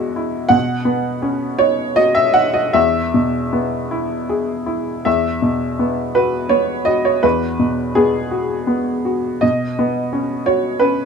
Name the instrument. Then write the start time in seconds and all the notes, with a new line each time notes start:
upright piano
Already playing: E2 B2 G#3 E4 F#4 E5
0.16 E4
0.49 B2 F#5
0.85 B3
1.22 C#4
1.58 D#4 C#5
1.96 F#4 D#5
2.15 E5
2.34 D#4 F#5
2.54 D#5
2.73 E2 E5
3.14 B2
3.53 B3
3.91 E4
4.29 G#4
4.66 E4
5.05 E2 E5
5.42 B2
5.79 B3
6.15 F#4 B4
6.49 B3 C#5
6.85 F#4 D#5
7.05 C#5
7.23 E2 B4
7.59 B2
7.95 B3 G#4
8.31 F#4
8.67 B3
9.05 F#4
9.41 B2 D#5
9.79 B3
10.13 C#4
10.46 F#4 C#5
10.80 C#4 B4